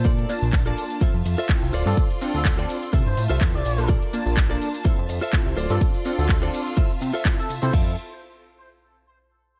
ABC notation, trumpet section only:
X:1
M:4/4
L:1/16
Q:"Swing 16ths" 1/4=125
K:F
V:1 name="Trumpet section"
z12 z3 A | z3 A A z4 c z3 d3 | z12 z3 A | z3 A A z8 A z c |
z16 |]